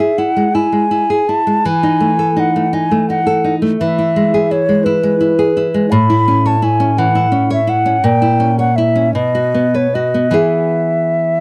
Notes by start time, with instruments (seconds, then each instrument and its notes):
Already playing: nylon-string guitar E4, flute E5
0.00 nylon-string guitar G#4
0.18 nylon-string guitar E4, flute F#5
0.36 nylon-string guitar G#3
0.55 nylon-string guitar E4, flute G#5
0.72 nylon-string guitar G#3
0.91 nylon-string guitar E4
1.10 nylon-string guitar G#4
1.28 nylon-string guitar E4, flute A5
1.47 nylon-string guitar G#3
1.65 nylon-string guitar E3, flute G#5
1.83 nylon-string guitar D#4
2.00 nylon-string guitar A3
2.19 nylon-string guitar A4
2.37 nylon-string guitar D#4, flute F#5
2.56 nylon-string guitar A3
2.73 nylon-string guitar D#4, flute G#5
2.91 nylon-string guitar A3
3.10 nylon-string guitar D#4, flute F#5
3.27 nylon-string guitar A4
3.44 nylon-string guitar D#4
3.62 nylon-string guitar A3
3.79 nylon-string guitar E3, flute E5
3.99 nylon-string guitar E4
4.16 nylon-string guitar G#3
4.34 nylon-string guitar G#4
4.51 nylon-string guitar E4, flute C#5
4.69 nylon-string guitar G#3
4.84 nylon-string guitar E4, flute B4
5.03 nylon-string guitar G#3
5.20 nylon-string guitar E4
5.39 nylon-string guitar G#4
5.57 nylon-string guitar E4
5.74 nylon-string guitar G#3
5.91 nylon-string guitar A2, flute B5
6.10 nylon-string guitar E4
6.28 nylon-string guitar C#4
6.46 nylon-string guitar C#5, flute A5
6.62 nylon-string guitar E4, flute G#5
6.80 nylon-string guitar C#4
6.98 nylon-string guitar E3, flute F#5
7.15 nylon-string guitar E4
7.32 nylon-string guitar C#4
7.50 nylon-string guitar C#5, flute E5
7.67 nylon-string guitar E4, flute F#5
7.86 nylon-string guitar C#4
8.04 nylon-string guitar A#2, flute G5
8.22 nylon-string guitar E4
8.40 nylon-string guitar C#4
8.59 nylon-string guitar C#5, flute F#5
8.76 nylon-string guitar E4, flute E5
8.96 nylon-string guitar C#4
9.14 nylon-string guitar B2, flute D#5
9.35 nylon-string guitar F#4
9.54 nylon-string guitar B3
9.74 nylon-string guitar B4, flute C#5
9.94 nylon-string guitar F#4, flute D#5
10.14 nylon-string guitar B3
10.31 nylon-string guitar E3 B3 G#4
10.35 flute E5